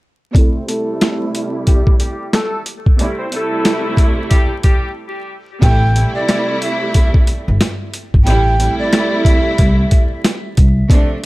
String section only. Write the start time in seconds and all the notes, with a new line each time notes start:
0.33 C3 G3 A3 E4
0.67 C3 G3 A3 E4
2.98 C3 G3 A3 E4
3.31 C3 G3 A3 E4
5.61 C3 G3 A3 E4
5.94 C3 G3 A3 E4
8.25 C3 G3 A3 E4
8.58 C3 G3 A3 E4
10.89 C3 F3 A3 D4
11.22 C3 F3